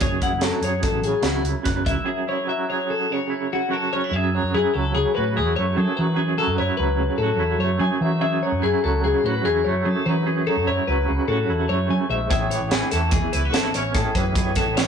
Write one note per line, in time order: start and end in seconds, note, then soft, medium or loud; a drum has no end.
0.00 0.27 F#1 medium
0.00 1.63 F#2 medium
0.00 0.43 E3 medium
0.00 0.62 G#4 medium
0.00 0.22 C#5 medium
0.00 kick medium
0.00 closed hi-hat medium
0.21 1.25 E4 medium
0.21 0.43 F#5 medium
0.21 kick medium
0.21 closed hi-hat medium
0.32 0.49 F#1 medium
0.41 2.08 F#3 medium
0.41 0.64 A4 medium
0.41 snare medium
0.41 closed hi-hat medium
0.61 0.79 F#2 medium
0.61 1.64 G#4 medium
0.61 0.83 C#5 medium
0.61 closed hi-hat medium
0.83 1.04 A4 medium
0.83 kick medium
0.83 closed hi-hat medium
0.92 1.01 A1 medium
1.02 1.12 A1 medium
1.02 2.06 C#3 medium
1.02 1.24 G#4 medium
1.02 closed hi-hat medium
1.22 1.40 C#2 medium
1.22 1.84 E4 medium
1.22 1.45 F#4 medium
1.22 snare medium
1.22 closed hi-hat medium
1.44 1.53 C#2 medium
1.44 closed hi-hat medium
1.63 1.83 F#1 medium
1.63 2.05 F#2 medium
1.63 2.04 B4 medium
1.63 kick medium
1.63 snare soft
1.63 closed hi-hat medium
1.85 1.95 C#2 medium
1.85 2.08 E4 medium
1.85 2.28 E5 medium
1.85 kick medium
1.85 closed hi-hat medium
2.05 3.68 F#2 medium
2.05 2.67 G#4 medium
2.27 3.29 E4 medium
2.27 2.49 C#5 medium
2.47 4.10 F#3 medium
2.47 2.69 E5 medium
2.69 3.70 G#4 medium
2.69 2.90 C#5 medium
2.90 3.12 A4 medium
3.10 4.10 C#3 medium
3.10 3.52 C#5 medium
3.30 3.92 E4 medium
3.53 3.73 F#4 medium
3.69 4.09 F#2 medium
3.69 4.10 F#4 medium
3.73 3.93 A4 medium
3.92 4.04 C#4 soft
3.92 4.13 C#5 medium
4.04 4.14 E4 soft
4.11 4.37 F#2 medium
4.11 4.35 E5 medium
4.16 5.76 F#2 medium
4.16 5.15 G#4 medium
4.34 4.74 F#3 medium
4.34 4.54 C#5 medium
4.43 4.52 F#2 medium
4.54 4.63 F#2 medium
4.54 5.36 E4 medium
4.54 4.74 G#4 medium
4.74 4.92 C#2 medium
4.74 5.96 F#3 medium
4.74 4.94 A4 medium
4.92 5.04 C#2 medium
4.92 5.96 C#3 medium
4.92 5.14 G#4 medium
5.15 5.39 A2 medium
5.15 5.77 F#4 medium
5.15 5.36 B4 medium
5.36 5.54 E2 medium
5.36 6.19 E4 medium
5.36 5.56 G#4 medium
5.55 5.74 F#2 medium
5.55 7.60 A3 medium
5.55 5.76 C#5 medium
5.76 6.16 F#2 medium
5.76 5.86 F#3 medium
5.76 6.16 G#4 medium
5.76 5.97 A4 medium
5.96 6.40 E3 medium
5.96 6.19 F#3 medium
5.96 6.38 B4 medium
6.16 7.78 F#2 medium
6.16 7.21 G#4 medium
6.38 6.79 F#3 medium
6.38 6.58 A4 medium
6.47 6.56 F#2 medium
6.58 6.67 F#2 medium
6.58 7.39 E4 medium
6.58 6.77 C#5 medium
6.77 6.96 C#2 medium
6.77 8.01 F#3 medium
6.77 7.19 B4 medium
6.99 7.07 C#2 medium
6.99 8.02 C#3 medium
7.18 7.38 A2 medium
7.18 7.79 F#4 medium
7.18 7.60 A4 medium
7.38 7.56 E2 medium
7.38 8.24 E4 medium
7.59 7.76 F#2 medium
7.59 9.66 A3 medium
7.59 7.80 C#5 medium
7.79 8.20 F#2 medium
7.79 7.89 F#3 medium
7.79 8.21 G#4 medium
7.79 8.02 G#5 medium
8.01 8.43 E3 medium
8.01 8.24 F#3 medium
8.01 8.20 E5 medium
8.21 9.84 F#2 medium
8.21 9.24 G#4 medium
8.21 8.42 E5 medium
8.42 8.82 F#3 medium
8.42 8.63 C#5 medium
8.52 8.61 F#2 medium
8.62 8.71 F#2 medium
8.62 9.45 E4 medium
8.62 8.84 G#4 medium
8.82 9.01 C#2 medium
8.82 10.04 F#3 medium
8.82 9.04 A4 medium
9.04 9.13 C#2 medium
9.04 10.07 C#3 medium
9.04 9.26 G#4 medium
9.24 9.47 A2 loud
9.24 9.85 F#4 medium
9.24 9.45 B4 medium
9.45 9.63 E2 medium
9.45 10.29 E4 medium
9.45 9.65 G#4 medium
9.64 9.82 F#2 medium
9.64 11.69 A3 medium
9.64 9.85 C#5 medium
9.85 10.24 F#2 medium
9.85 9.94 F#3 medium
9.85 10.26 G#4 medium
9.85 10.06 A4 medium
10.05 10.48 E3 medium
10.05 10.24 F#3 medium
10.05 10.47 B4 medium
10.26 11.87 F#2 medium
10.26 11.28 G#4 medium
10.47 10.86 F#3 medium
10.47 10.67 A4 medium
10.57 10.66 F#2 medium
10.67 10.76 F#2 medium
10.67 11.49 E4 medium
10.67 10.88 C#5 medium
10.87 11.05 C#2 medium
10.87 12.28 F#3 medium
10.87 11.28 B4 medium
11.07 11.17 C#2 medium
11.07 12.28 C#3 medium
11.28 11.50 A2 medium
11.28 12.29 F#4 medium
11.28 11.69 A4 medium
11.50 11.66 E2 medium
11.50 12.71 E4 medium
11.69 11.87 F#2 medium
11.69 13.74 A3 medium
11.69 11.90 C#5 medium
11.88 12.08 F#2 medium
11.88 11.98 F#3 medium
11.88 12.10 G#5 medium
12.08 12.27 A#1 medium
12.08 12.30 G#2 medium
12.08 12.30 E5 medium
12.30 12.56 A1 loud
12.30 13.12 A2 medium
12.30 13.32 G#4 medium
12.30 12.51 E5 medium
12.30 kick loud
12.30 closed hi-hat medium
12.51 12.90 E3 medium
12.51 12.71 C#5 medium
12.51 closed hi-hat medium
12.61 12.69 A1 medium
12.71 12.80 A1 medium
12.71 13.32 E4 medium
12.71 12.91 G#4 medium
12.71 snare loud
12.71 closed hi-hat medium
12.90 13.09 E2 medium
12.90 14.15 E3 medium
12.90 13.12 A4 medium
12.90 snare soft
12.90 closed hi-hat medium
13.11 13.94 E2 medium
13.11 13.21 E2 medium
13.11 13.33 G#4 medium
13.11 kick loud
13.11 closed hi-hat medium
13.32 13.53 C#2 medium
13.32 13.45 E4 medium
13.32 13.53 B4 medium
13.32 closed hi-hat medium
13.45 13.95 F#4 soft
13.53 13.70 G#1 medium
13.53 14.79 E4 medium
13.53 13.75 A4 medium
13.53 snare loud
13.53 closed hi-hat medium
13.74 13.91 A1 medium
13.74 14.33 C#4 medium
13.74 13.94 C#5 medium
13.74 closed hi-hat medium
13.95 14.36 A2 medium
13.95 14.03 A2 medium
13.95 14.37 G#4 medium
13.95 14.16 A4 medium
13.95 kick loud
13.95 snare soft
13.95 closed hi-hat medium
14.15 14.57 F#2 medium
14.15 14.57 E3 medium
14.15 14.56 B4 medium
14.15 kick medium
14.15 closed hi-hat medium
14.35 14.87 A2 medium
14.35 14.87 G#4 medium
14.35 kick loud
14.35 closed hi-hat medium
14.55 14.87 E3 medium
14.55 14.77 A4 medium
14.55 kick medium
14.55 snare soft
14.55 closed hi-hat medium
14.66 14.75 A1 medium
14.77 14.85 A1 medium
14.77 14.87 E4 medium
14.77 14.87 C#5 medium
14.77 snare loud
14.77 closed hi-hat medium